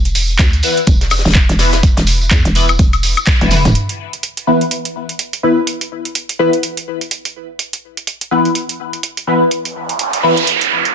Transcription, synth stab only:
0.63 0.79 E3 medium
0.63 0.79 B3 medium
0.63 0.79 E4 medium
0.63 0.79 B4 medium
1.59 1.75 E3 medium
1.59 1.75 B3 medium
1.59 1.75 E4 medium
1.59 1.75 B4 medium
2.55 2.66 E3 medium
2.55 2.66 B3 medium
2.55 2.66 E4 medium
2.55 2.66 B4 loud
3.41 3.49 E3 medium
3.41 3.49 B3 medium
3.41 3.49 E4 medium
3.41 3.49 B4 loud
3.51 3.62 E3 medium
3.51 3.62 B3 medium
3.51 3.62 E4 medium
3.51 3.62 B4 medium
4.47 4.63 E3 medium
4.47 4.63 B3 medium
4.47 4.63 E4 medium
4.47 4.63 B4 medium
5.43 5.59 E3 medium
5.43 5.59 B3 medium
5.43 5.59 E4 medium
5.43 5.59 B4 medium
6.39 6.50 E3 medium
6.39 6.50 B3 medium
6.39 6.50 E4 medium
6.39 6.50 B4 loud
8.31 8.47 E3 medium
8.31 8.47 B3 medium
8.31 8.47 E4 medium
8.31 8.47 B4 medium
9.27 9.43 E3 medium
9.27 9.43 B3 medium
9.27 9.43 E4 medium
9.27 9.43 B4 medium
10.23 10.34 E3 medium
10.23 10.34 B3 medium
10.23 10.34 E4 medium
10.23 10.34 B4 loud

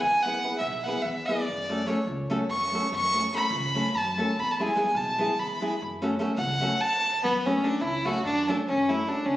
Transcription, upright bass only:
0.03 0.38 E2 medium
0.61 0.87 B1 medium
1.05 1.31 E2 loud
1.49 1.83 F#2 medium
2.07 2.33 C#2 medium
2.50 2.76 F#2 medium
2.92 3.27 F#2 medium
3.50 3.76 C#2 loud
3.95 4.20 F#2 loud
4.38 4.72 E2 loud
4.95 5.21 B1 loud
5.39 5.65 E2 medium
5.82 6.16 F#2 loud
6.38 6.64 C#2 loud
7.25 7.59 F#2 loud
7.82 8.08 C#2 loud
8.25 8.51 F#2 medium
8.69 9.03 F#2 loud
9.26 9.37 C#2 loud

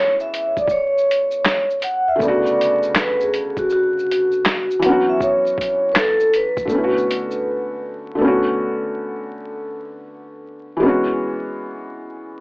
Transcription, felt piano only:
0.00 1.76 E3 medium
0.00 1.77 G#3 medium
0.00 1.79 B3 medium
0.00 1.80 C#4 medium
0.00 1.82 F#4 medium
2.16 4.76 D3 medium
2.16 4.78 A3 medium
2.22 4.81 C#3 medium
2.22 4.79 B3 medium
2.28 4.83 F#4 medium
4.79 6.65 E3 medium
4.79 6.66 F#3 medium
4.86 6.68 B3 medium
4.86 6.70 C#4 medium
4.92 6.71 F#4 medium
6.65 8.14 D3 medium
6.65 8.16 A3 medium
6.71 8.18 B3 soft
6.71 8.19 C#4 medium
6.78 6.82 E4 soft
6.84 8.24 F#4 medium
8.15 10.76 D3 medium
8.15 10.78 A3 medium
8.21 10.79 B3 medium
8.21 10.81 C#4 medium
8.27 10.82 F#4 medium
10.77 12.40 E3 medium
10.77 12.40 G#3 medium
10.83 12.40 B3 medium
10.83 12.40 C#4 medium
10.89 12.40 F#4 medium

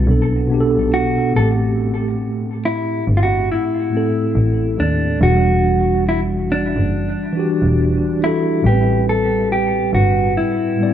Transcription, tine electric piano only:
0.04 0.43 B2 medium
0.04 0.44 B3 medium
0.09 0.45 D4 medium
0.09 0.46 A4 medium
0.48 1.34 B2 medium
0.48 1.35 B3 medium
0.52 1.36 D4 medium
0.52 0.60 G4 medium
0.61 1.41 A4 loud
1.33 2.78 A2 medium
1.33 2.79 A3 medium
1.38 2.80 C4 medium
1.38 2.82 G4 medium
3.90 5.02 A2 medium
3.90 5.03 A3 medium
3.95 5.04 C4 medium
3.95 5.05 A4 medium
5.18 6.64 E3 medium
5.18 6.65 D4 medium
5.23 6.67 G3 medium
5.23 6.66 F#4 medium
7.33 8.08 E3 medium
7.33 8.09 D4 medium
7.37 8.10 F#4 medium
7.37 8.12 G4 medium
8.19 8.57 E3 medium
8.19 8.58 D4 medium
8.23 8.59 F#4 medium
8.23 8.60 A4 medium
8.62 10.07 A2 medium
8.62 10.08 G3 medium
8.66 8.73 B3 medium
8.66 10.10 B4 medium
8.72 10.12 C4 medium
10.76 10.94 A2 medium
10.76 10.94 G3 medium
10.80 10.87 B3 medium
10.80 10.94 D5 medium
10.87 10.94 C4 medium

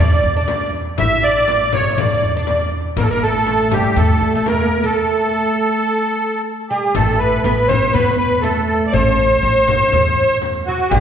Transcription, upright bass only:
0.00 0.21 E2 medium
0.24 0.90 E2 medium
0.98 1.87 A1 medium
1.97 2.20 E2 medium
2.22 2.89 E2 medium
2.96 3.86 A1 medium
3.96 4.19 E2 medium
4.21 4.88 E2 medium
6.95 7.39 A1 loud
7.44 7.89 A1 medium
7.94 8.83 E2 medium
8.94 9.38 A1 medium
9.43 9.87 A1 medium
9.92 10.81 E2 medium
10.91 11.00 A1 loud

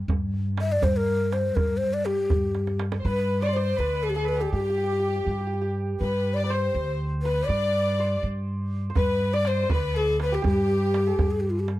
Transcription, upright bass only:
0.08 0.75 G2 loud
0.82 1.48 G2 loud
1.57 1.79 G2 loud
2.31 2.97 G2 medium
3.05 3.71 G2 loud
3.79 4.45 D2 medium
4.53 5.19 G2 medium
5.26 5.92 G2 medium
6.01 6.67 G2 medium
6.75 7.40 D2 loud
7.49 8.15 G2 medium
8.23 8.89 G2 medium
8.97 9.63 G2 loud
9.71 10.36 D2 loud
10.44 11.10 G2 loud
11.19 11.79 G2 medium

